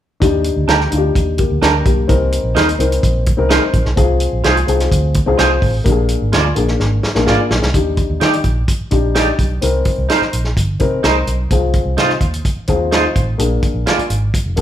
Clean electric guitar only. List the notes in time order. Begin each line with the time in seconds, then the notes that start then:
0.68 D4 G4 A#4
1.62 D4 G4 A#4
2.55 D#4 A#4 C5
3.49 D#4 A#4 C5
4.44 F4 G#4 C5
5.38 F4 G#4 C5
6.32 F4 G#4 D5
7.26 F4 G#4 D5
8.20 D#4 G4 D5
9.15 D#4 G4 D5
10.09 D#4 A#4 C5
11.03 D#4 A#4 C5
11.97 D#4 F4 C5
12.91 D#4 F4 C5
13.86 F4 G#4 D5